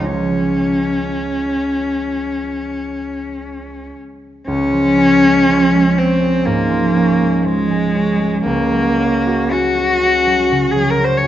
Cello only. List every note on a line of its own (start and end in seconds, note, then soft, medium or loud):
0.05 3.93 C#4 medium
4.47 5.99 C#4 loud
5.97 6.48 C4 medium
6.46 7.47 A#3 medium
7.46 8.44 G#3 medium
8.45 9.53 A#3 medium
9.52 10.72 F#4 medium
10.71 10.92 G#4 medium
10.90 11.06 A#4 medium
11.04 11.18 C5 medium
11.17 11.27 C#5 medium